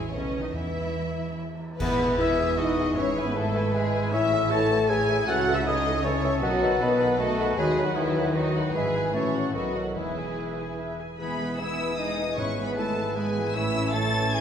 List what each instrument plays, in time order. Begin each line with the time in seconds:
Already playing: double bass section A1, harp B2 C#5, cello section G#3, violin section C#5 G#5
0.00 harp A3 F#4
0.08 harp B4, violin section D#5
0.12 double bass section B1, cello section C#3, french horn section A3 B3, viola section C#4, violin section C#5
0.36 harp E3
0.40 cello section D#3, harp G#3, viola section D#4, violin section D#5
0.45 harp E4
0.49 timpani E2, french horn section G#3, harp B4
0.54 double bass section E2, cello section E3, french horn section B3, viola section E4, violin section E5
1.78 double bass section E1, cello section E2, harp E3, bassoon E3, french horn section B3, viola section E4 B4, clarinet G#4, violin section B4, oboe B4, flute B5, concert bass drum, crash
1.89 harp G#3
1.98 bassoon E3, harp E4, clarinet G#4, viola section G#4 E5
2.09 harp B4
2.18 bassoon E3, french horn section E4, viola section E4 B4, harp G#4, clarinet G#4, oboe G#4, violin section E5, flute E6
2.39 bassoon E3, clarinet G#4, viola section G#4 E5
2.48 harp G#5
2.57 bassoon E3, french horn section D#4, viola section E4 B4, oboe F#4, clarinet G#4, violin section D#5, harp B5, flute D#6
2.68 harp E5
2.77 bassoon E3, clarinet G#4, viola section G#4 E5
2.87 harp B4
2.95 double bass section G#1, cello section G#2, harp G#2, bassoon E3, french horn section C#4, oboe E4, viola section G#4 E5, clarinet B4, violin section C#5, flute C#6
3.07 harp G#3
3.15 bassoon E3, harp B3, clarinet B4, viola section B4 G#5
3.22 french horn section B3, violin section B4, flute B5
3.26 harp E4
3.34 bassoon E3, french horn section A3, viola section G#4 E5, violin section A4, clarinet B4, harp B4, flute A5
3.44 harp E4
3.54 bassoon E3, clarinet B4, viola section B4 G#5, harp E5
3.64 harp B5
3.72 bassoon E3, french horn section G#3, violin section G#4, viola section G#4 E5, clarinet B4, harp E5, flute G#5
3.83 harp B4
3.93 bassoon E3, harp E4, viola section B4 G#5, clarinet B4
4.11 double bass section A1, harp A2, cello section A2, bassoon E3, oboe C#4, french horn section E4, viola section E4 C#5, clarinet C#5, violin section E5, flute E6
4.22 harp E3
4.32 bassoon E3, viola section A4 E5, clarinet C#5
4.41 harp E4
4.49 bassoon E3, viola section E4 C#5, oboe F#4, french horn section A4, harp C#5, clarinet C#5, violin section A5, flute A6
4.70 bassoon E3, viola section A4 E5, clarinet C#5
4.80 harp C#6
4.88 bassoon E3, viola section E4 C#5, oboe E4, french horn section G#4, clarinet C#5, violin section G#5, flute G#6
5.09 bassoon E3, viola section A4 E5, clarinet C#5, harp C#5
5.19 harp E4
5.27 double bass section C#2, cello section C#3, harp C#3, bassoon E3, viola section E4 C#5, french horn section F#4, clarinet A4, oboe A4, violin section F#5, flute F#6
5.37 harp C#4
5.48 bassoon E3, harp A3, viola section A4 E5, clarinet A4
5.53 french horn section E4, harp E4, violin section E5, flute E6
5.65 bassoon E3, french horn section D#4, viola section E4 C#5, oboe G#4, clarinet A4, harp C#5, violin section D#5, flute D#6
5.86 bassoon E3, clarinet A4, viola section A4 E5, harp E5
5.95 harp C#6
6.04 bassoon E3, french horn section C#4, viola section E4 C#5, clarinet A4, oboe A4, violin section C#5, harp E5, flute C#6
6.14 harp A4
6.23 bassoon E3, clarinet A4, viola section A4 E5, harp C#5
6.33 harp E4
6.41 double bass section B1, harp B2, cello section B2, bassoon D#3, french horn section F#3, violin section F#4, viola section F#4 D#5, clarinet B4, flute F#5
6.51 harp B3
6.61 bassoon D#3, harp F#3, clarinet B4, viola section B4 F#5
6.70 harp F#4
6.80 bassoon D#3, french horn section B3, viola section F#4 D#5, violin section B4, clarinet B4, harp D#5, flute B5
6.90 harp F#4
6.98 bassoon D#3, clarinet B4, viola section B4 F#5, harp F#5
7.09 harp D#6
7.17 bassoon D#3, french horn section A3, viola section F#4 D#5, oboe F#4, violin section A4, clarinet B4, harp F#5, flute A5
7.28 harp F#4
7.37 bassoon D#3, clarinet B4, viola section B4 F#5, harp D#5
7.47 harp F#4
7.56 double bass section D#2, harp D#3, cello section D#3, bassoon F#3, french horn section G#3, viola section F#4 D#5, violin section G#4, clarinet B4, oboe B4, flute G#5
7.67 harp D#4
7.76 harp F#3, bassoon F#3, clarinet B4, viola section B4 F#5
7.82 french horn section F#3, violin section F#4, harp F#4, flute F#5
7.95 french horn section E3, bassoon F#3, violin section E4, viola section F#4 D#5, oboe G#4, harp B4, clarinet B4, flute E5
8.15 bassoon F#3, clarinet B4, viola section B4 F#5, harp F#5
8.34 french horn section D#3, bassoon F#3, violin section D#4, viola section F#4 D#5, oboe F#4, clarinet B4, flute D#5, harp F#5
8.45 harp F#4
8.54 bassoon F#3, viola section B4 F#5, harp B4, clarinet B4
8.65 harp F#4
8.73 double bass section G#1, harp G#2, cello section G#2, bassoon E3, french horn section G#3, violin section G#4, viola section G#4 E5, clarinet B4, oboe B4, flute G#5
8.85 harp E3
8.95 harp G#3, viola section B4 G#5
9.05 harp E4
9.13 double bass section A1, cello section A2, harp A2, bassoon E3, french horn section C#4, viola section E4 E5, clarinet F#4, oboe A4, violin section C#5, flute C#6
9.23 harp E3
9.33 harp F#3, viola section F#4 F#5
9.44 harp E4
9.53 double bass section B1, harp B2, cello section B2, bassoon D#3, french horn section F#3, violin section F#4, oboe F#4, clarinet A4, viola section B4 D#5, flute F#5
9.64 harp F#3
9.75 harp A3, viola section A4 F#5
9.84 harp D#4
9.95 double bass section E1, cello section E2, harp E3, bassoon E3, french horn section E3, violin section E4, clarinet G#4, oboe G#4, viola section B4 E5, flute E5
10.06 harp G#3
10.16 harp E4, viola section G#4 G#5
10.27 harp B4
10.38 harp G#4, viola section B4 E5
10.48 harp E5
10.58 viola section G#4 G#5, harp B5
10.68 harp G#5
10.78 viola section B4 E5, harp B5
10.89 harp E5
10.99 viola section G#4 G#5, harp G#4
11.10 harp B4
11.19 double bass section E1, harp E3, bassoon E3, viola section G#3 B3, french horn section G#3 B3, cello section B3, violin section E4 G#4 B5, oboe G#4, clarinet B4, flute B4
11.31 harp E4
11.39 viola section E3 G#3, violin section B3 B4
11.49 harp G#4
11.58 bassoon E3, viola section G#3 B3, french horn section B3, cello section E4, violin section E4 G#4 E6, oboe G#4, flute E5, clarinet E5, harp E5
11.63 french horn section G#3
11.69 harp B5
11.80 viola section E3 G#3, violin section B3 B4, harp G#5
11.89 harp E5
11.98 viola section G#3 B3, cello section D#4, violin section E4 G#4 D#6, harp B4, flute D#5, clarinet D#5
12.09 harp E4
12.18 viola section E3 G#3, harp G#3, violin section B3 B4
12.28 harp E4
12.37 double bass section G#1, timpani G#2, harp G#2, bassoon E3, french horn section E3 B3, viola section G#3 B3, cello section C#4, violin section E4 C#6, oboe B4, flute C#5, clarinet C#5
12.48 harp B3
12.57 viola section E3 G#3, violin section B3 G#4, harp E4
12.64 cello section B3, flute B4, clarinet B4, harp B4, violin section B5
12.77 viola section G#3 B3, cello section A3, harp E4, violin section E4 A5, flute A4, clarinet A4
12.86 harp E5
12.96 viola section E3 G#3, violin section B3 G#4, harp B5
13.06 harp B4
13.15 bassoon E3, french horn section E3 B3, viola section G#3 B3, cello section G#3, harp E4, violin section E4 G#5, flute G#4, clarinet G#4, oboe B4
13.25 harp B3
13.35 viola section E3 G#3, harp G#3, violin section B3 G#4
13.45 harp B3
13.54 double bass section A1, harp A2, bassoon E3, french horn section E3 C#4, viola section A3, violin section E4 E6, cello section E4, oboe C#5, flute E5, clarinet E5
13.64 harp A3
13.74 viola section E3 C#4, violin section C#4 A4, harp E4
13.84 harp C#5
13.92 bassoon E3, french horn section E3 C#4, viola section A3, violin section E4 A6, harp A4, cello section A4, oboe C#5, flute A5, clarinet A5
14.04 harp E5
14.12 viola section E3 C#4, violin section C#4 A4
14.31 viola section A3, violin section E4 G#6, harp E4, cello section G#4, flute G#5, clarinet G#5